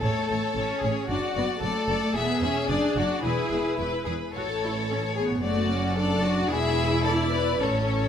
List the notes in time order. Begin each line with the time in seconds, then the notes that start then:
0.01 A1 A2 A3 A4 C#5
0.29 A1 A2 C#5
0.57 A1 A2 C#4 C#5
0.81 A1 A2 G#4 C#5
1.09 F#1 F#2 D4 F#4 D5
1.35 F#1 F#2 B3 D5
1.61 F#1 F#2 A3 A4 D5
1.88 F#1 F#2 D5
2.14 E1 E2 B3 G#4 E5
2.41 E1 E2 C#4 E5
2.68 F#1 F#2 D4 D5
2.97 F#1 F#2 F#4 D5
3.23 E1 E2 E4 G#4 B4
3.51 E1 E2 B4
3.78 E1 E2 B4
4.06 E1 E2 G#4 B4
4.33 A1 A2 F#4 A4 C#5
4.64 E4
4.91 C#4
5.16 B3 G#4
5.43 F#1 F#2 A3 F#4 D5
5.72 C#4
5.96 D4 A4 D5
6.24 F#4
6.50 E1 E2 E4 G#4 E5
7.03 A4 D5
7.31 B4
7.61 A1 A2 C#4 A4 C#5